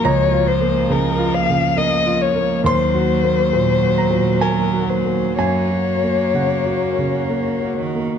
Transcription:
<<
  \new Staff \with { instrumentName = "Violin" } { \time 3/4 \key ees \dorian \tempo 4 = 67 des''8 c''8 bes'8 f''8 ees''8 des''8 | c''2 bes'8 c''8 | des''2~ des''8 r8 | }
  \new Staff \with { instrumentName = "Ambient pad" } { \time 3/4 \key ees \dorian << { <f' bes'>2. | <ges' bes'>2.~ | <ges' bes'>2. | } \\ { bes2. | bes2. | des'2. | } >> }
  \new Staff \with { instrumentName = "Grand piano" } { \time 3/4 \key ees \dorian bes''2 r4 | c'''4. bes''8 aes''4 | aes''4 ges''4 r4 | }
  \new Staff \with { instrumentName = "Grand piano" } { \time 3/4 \key ees \dorian \tuplet 3/2 { des,8 f'8 bes8 des8 f'8 des8 bes8 f'8 bes8 } | \tuplet 3/2 { ees,8 ges'8 bes8 bes,8 ges'8 bes,8 bes8 ges'8 bes8 } | \tuplet 3/2 { ges,8 ges'8 bes8 des8 ges'8 des8 bes8 ges'8 bes8 } | }
  \new Staff \with { instrumentName = "Cello" } { \clef bass \time 3/4 \key ees \dorian f2. | ges2. | bes2~ bes8 ees8 | }
>>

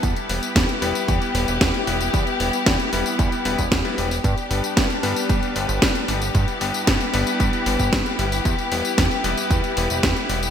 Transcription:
<<
  \new Staff \with { instrumentName = "String section" } { \time 4/4 \key e \minor \tempo 4 = 114 << { <b g'>1~ | <b g'>1 | <b g'>1~ | <b g'>1~ |
<b g'>1 | } \\ { e'1~ | e'1 | d'1 | e'1 |
e'1 | } >> }
  \new Staff \with { instrumentName = "Electric grand piano" } { \time 4/4 \key e \minor <g b e' b'>8 <g b e' b'>4 <g b e' b'>4 <g b e' b'>4 <g b e' b'>8~ | <g b e' b'>8 <g b e' b'>4 <g b e' b'>4 <g b e' b'>16 r8 <g b e' b'>16 <g b e' b'>16 r16 | r8 <g b d' b'>4 <g b d' b'>4 <g b d' b'>4 <g b d' b'>8~ | <g b d' b'>8 <g b d' b'>4 <g b d' b'>4 <g b d' b'>4 <g b e' b'>8~ |
<g b e' b'>8 <g b e' b'>4 <g b e' b'>4 <g b e' b'>4 <g b e' b'>8 | }
  \new Staff \with { instrumentName = "Analog synth bass" } { \clef bass \time 4/4 \key e \minor e,16 r16 e,,16 r16 e,16 r16 e,,16 r16 e,16 r16 e,,16 e,,16 e,16 r16 e,,8 | e,16 r16 e,,16 r16 e,16 r16 e,,16 r16 e,16 r16 e,,16 e,,16 e,16 r16 e,,8 | g,16 r16 g,,16 r16 g,16 r16 g,,16 r16 g,16 r16 g,,16 g,,16 g,16 r16 g,,8 | g,16 r16 g,,16 r16 g,16 r16 g,,16 r16 g,16 r16 g,,16 g,,16 g,16 r16 g,,8 |
e,16 r16 e,,16 r16 e,16 r16 e,,16 r16 e,16 r16 e,,16 e,,16 e,16 r16 e,,8 | }
  \new DrumStaff \with { instrumentName = "Drums" } \drummode { \time 4/4 <hh bd tamb>16 <hh tamb>16 hho16 <hh tamb>16 <hh bd sn tamb>16 <hh tamb>16 hho16 <hh tamb>16 <hh bd tamb>16 <hh tamb>16 hho16 <hh tamb>16 <hh bd sn tamb>16 <hh tamb>16 hho16 <hh tamb>16 | <hh bd tamb>16 <hh tamb>16 hho16 <hh tamb>16 <hh bd sn tamb>16 <hh tamb>16 hho16 <hh tamb>16 <hh bd tamb>16 <hh tamb>16 hho16 <hh bd tamb>16 <hh bd sn tamb>16 <hh tamb>16 hho16 <hho tamb>16 | <hh bd tamb>16 <hh tamb>16 hho16 <hh tamb>16 <hh bd sn tamb>16 <hh tamb>16 hho16 <hh tamb>16 <hh bd tamb>16 <hh tamb>16 hho16 <hh tamb>16 <hh bd sn tamb>16 <hh tamb>16 hho16 <hh tamb>16 | <hh bd tamb>16 <hh tamb>16 hho16 <hh tamb>16 <hh bd sn tamb>16 <hh tamb>16 hho16 <hh tamb>16 <hh bd tamb>16 <hh tamb>16 hho16 <hh bd tamb>16 <hh bd sn tamb>16 <hh tamb>16 hho16 <hho tamb>16 |
<hh bd tamb>16 <hh tamb>16 hho16 <hh tamb>16 <hh bd sn tamb>16 <hh tamb>16 hho16 <hh tamb>16 <hh bd tamb>16 <hh tamb>16 hho16 <hh tamb>16 <hh bd sn tamb>16 <hh tamb>16 hho16 <hh tamb>16 | }
>>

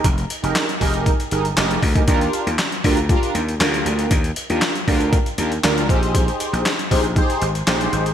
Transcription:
<<
  \new Staff \with { instrumentName = "Analog polysynth" } { \time 4/4 \key ees \major \tempo 4 = 118 r8. <ees' g' aes' bes'>8 r16 <ees' g' aes' bes'>8 r8 <ees' g' aes' bes'>16 r16 <ees' g' aes' bes'>8 r16 <ees' g' aes' bes'>16 | <d' f' g' bes'>4 r8 <d' f' g' bes'>16 r16 <d' f' g' bes'>8 r8 <d' f' g' bes'>4 | r8. <d' f' g' bes'>8 r16 <d' f' g' bes'>8 r8 <d' f' g' bes'>16 r16 <d' f' g' bes'>8 <ees' g' aes' c''>8~ | <ees' g' aes' c''>4 r8 <ees' g' aes' c''>16 r16 <ees' g' aes' c''>8 r8 <ees' g' aes' c''>4 | }
  \new Staff \with { instrumentName = "Slap bass" } { \clef bass \time 4/4 \key ees \major f,,8 r16 f,,16 r8 f,,8. r16 g,,8 f,,8 d,8 | ees,8 r16 ees,16 r8 d,8. r16 ees,8 d,8 d,8 | ees,8 r16 ees,16 r8 d,8. r16 ees,8 d,8 bes,,8~ | bes,,8 r16 bes,,16 r8 bes,,8. r16 aes,,8 bes,,8 aes,,8 | }
  \new DrumStaff \with { instrumentName = "Drums" } \drummode { \time 4/4 <hh bd>16 hh16 hh16 hh16 <hc hh sn>16 hh16 <hho bd>16 hh16 <hh bd>16 hh16 hh16 hh16 <hc hh sn>16 hh16 <hho bd>16 <hh bd>16 | <hh bd>16 hh16 hh16 hh16 <hc hh sn>16 hh16 <hho bd>16 hh16 <hh bd>16 hh16 hh16 hh16 <hc hh sn>16 hh16 hh16 hh16 | <hh bd>16 hh16 hh16 hh16 <hc hh sn>16 hh16 <hho bd>16 hh16 <hh bd>16 hh16 hh16 hh16 <hc hh sn>16 hh16 <hh bd>16 hh16 | <hh bd>16 hh16 hh16 hh16 <hc hh sn>16 hh16 <hho bd>16 hh16 <hh bd>16 hh16 hh16 hh16 <hc hh sn>16 hh16 hh16 hh16 | }
>>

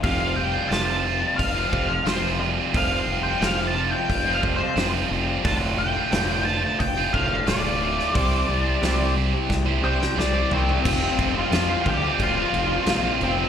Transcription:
<<
  \new Staff \with { instrumentName = "Lead electric guitar" } { \time 4/4 \key f \major \tempo 4 = 89 << { f''8 g''8 a''4 f''4 c''8 r8 | \tuplet 3/2 { f''8 c'''8 g''8 f''8 a''8 g''8~ g''8 f''8 c''8 } r4 | a''8 g''4 a''8 g''8 f''8 d''4~ | d''4. r4 g''8 d''4 |
r1 | } \\ { r1 | r1 | r1 | r2. r8 <c' c''>8~ |
<c' c''>8. <f' f''>8. <g' g''>8 <f' f''>4. <c' c''>8 | } >> }
  \new Staff \with { instrumentName = "Overdriven electric guitar" } { \time 4/4 \key f \major <f, c f g c' f'>8 <f g c' f'>8 <f, c f g c' f'>16 <f g c' f'>8 <f g c' f'>8 <f g c' f'>16 <f g c' f'>16 <f g c' f'>16 <f, c f g c' f'>16 <f g c' f'>16 <f g c' f'>8 | <f, c f g c' f'>8 <f g c' f'>8 <f, c f g c' f'>16 <f g c' f'>8 <f g c' f'>8 <f g c' f'>16 <f g c' f'>16 <f g c' f'>16 <f, c f g c' f'>16 <f g c' f'>16 <f g c' f'>8 | <d, a, d a f'>8 <a, d a f'>8 <d, a, d a f'>16 <d a f'>8 <d a f'>8 <d a f'>16 <a, d a f'>16 <d a f'>16 <d, a, d a f'>16 <d a f'>16 <a, d a f'>8 | <c g c' e' g' c''>8 <c' e' g' c''>8 <c g c' e' g' c''>16 <c' e' g' c''>8 <c' e' g' c''>8 <c' e' g' c''>16 <c' e' g' c''>16 <c' e' g' c''>16 <c g c' e' g' c''>16 <c' e' g' c''>16 <c' e' g' c''>8 |
<f, c f g c' f'>8 <f g c' f'>16 <f g c' f'>16 <f, c f g c' f'>8 <f g c' f'>16 <f g c' f'>8 <f g c' f'>16 <f g c' f'>8 <f, c f g c' f'>16 <f g c' f'>16 <f g c' f'>16 <f g c' f'>16 | }
  \new Staff \with { instrumentName = "Distorted electric guitar" } { \time 4/4 \key f \major <f, c f g c' f'>8. <f g c' f'>16 <f, c f g c' f'>8 <f g c' f'>8. <f g c' f'>16 <f g c' f'>8 <f, c f g c' f'>16 <f g c' f'>16 <f g c' f'>8 | <f, c f g c' f'>8. <f g c' f'>16 <f, c f g c' f'>8 <f g c' f'>8. <f g c' f'>16 <f g c' f'>8 <f, c f g c' f'>16 <f g c' f'>16 <f g c' f'>8 | <d, a, d a f'>8. <d a f'>16 <d, a, d a f'>8 <a, d a f'>8. <d a f'>16 <a, d a f'>8 <d, a, d a f'>16 <d a f'>16 <a, d a f'>8 | <c g c' e' g' c''>8. <c' e' g' c''>16 <c g c' e' g' c''>8 <c' e' g' c''>8. <c' e' g' c''>16 <c' e' g' c''>8 <c g c' e' g' c''>16 <c' e' g' c''>16 <c' e' g' c''>8 |
<f, c f g c' f'>8 <f g c' f'>8 <f, c f g c' f'>16 <f g c' f'>8 <f g c' f'>8 <f g c' f'>8. <f, c f g c' f'>16 <f g c' f'>16 <f g c' f'>16 <f g c' f'>16 | }
  \new Staff \with { instrumentName = "Clean electric guitar" } { \clef bass \time 4/4 \key f \major <f, c f>8 <f, c>8 <f, c f>8 <f, c>8 <f, c>8 <f, c f>8 <f, c>8 <f, c>8 | <f, c f>8 <f, c>8 <f, c f>8 <f, c>8 <f, c>8 <f, c f>8 <f, c>8 <f, c>8 | <d, a, d>8 <d, a,>8 <d, a, d>8 <d, a,>8 <d, a,>8 <d, a, d>8 <d, a,>8 <d, a,>8 | <c g c'>8 <c g>8 <c g c'>8 <c g>8 <c g>8 <c g c'>8 c8 <c g>8 |
r1 | }
  \new Staff \with { instrumentName = "Fingered electric bass" } { \clef bass \time 4/4 \key f \major f,,4 f,,4 f,,8 f,,8 f,,4 | f,,8 f,,8 f,,4 f,,4 f,,8 f,,8 | f,,4 f,,4 f,,8 f,,8 d,,4 | c,8 c,8 c,4 c,4 c,8 c,8 |
f,,8 f,,8 f,8 d,8 d,,8 f,,8 bes,,8 f,,8 | }
  \new DrumStaff \with { instrumentName = "Drums" } \drummode { \time 4/4 <hho bd>4 <hho sn>4 <hho bd>8 bd8 <hho sn>4 | <hho bd>4 <hho sn>4 <hho bd>8 bd8 <hho sn>4 | <hho bd>4 <hho sn>4 <hho bd>8 bd8 <hho sn>8. sn16 | <hho bd>4 <hho sn>4 <bd sn>16 tommh8 sn16 sn8 tomfh16 tomfh16 |
<cymc bd>8 <cymc bd>8 <cymc sn>8 <cymc bd>8 <cymc bd>8 cymc8 <cymc sn>8 cymc8 | }
>>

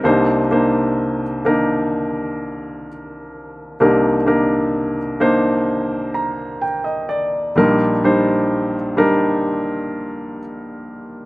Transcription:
<<
  \new Staff \with { instrumentName = "Grand piano" } { \time 4/4 \key c \minor \tempo 4 = 64 << { r1 | r2 r8 bes''8 g''16 ees''16 d''8 | r1 | } \\ { <bes d' ees' c''>8 <bes d' ees' c''>8. r16 <bes d' ees' bes'>4. r4 | <bes d' ees' bes'>8 <bes d' ees' bes'>8. r16 <bes d' ees' c''>4. r4 | <g d' ees' bes'>8 <g d' ees' c''>8. r16 <g d' ees' bes'>4. r4 | } >> }
  \new Staff \with { instrumentName = "Grand piano" } { \clef bass \time 4/4 \key c \minor <c, c>1 | <c, c>1 | <bes,, bes,>1 | }
>>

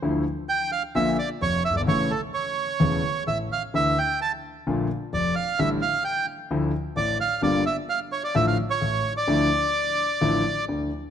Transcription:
<<
  \new Staff \with { instrumentName = "Bandoneon" } { \time 4/4 \key d \minor \tempo 4 = 130 r4 g''8 f''8 e''8 d''8 cis''8 e''16 d''16 | cis''8 a'8 cis''2 e''8 f''8 | e''8 g''8 a''8 r4. d''8 f''8 | e''8 f''8 g''8 r4. d''8 f''8 |
d''8 e''8 f''8 cis''16 d''16 e''16 f''8 cis''4 d''16~ | d''2. r4 | }
  \new Staff \with { instrumentName = "Grand piano" } { \clef bass \time 4/4 \key d \minor <d, d f a e'>8 r4. <bes,, bes, d f bes f'>8 r8 <f,, f,>8 r32 fis,,32 g,,32 gis,,32 | <a,, a, cis e a e'>8 r4. <e,, e, cis e a e'>8 r8 <a,, a,>8 r8 | <d, d e a e'>8 r4. <bes,, bes, d a bes f'>8 r8 <f,, f,>8 r8 | <a,, a, d g a e'>8 r4. <d, d f a e'>8 r8 <a,, a,>8 r8 |
<g,, g, d g bes f'>8 r4. <a,, a, d f a f'>8 r8 <a,, a,>8 r8 | <d, d f a e'>8 r4. <a,, a, d f a e'>8 r8 <d, d>8 r8 | }
>>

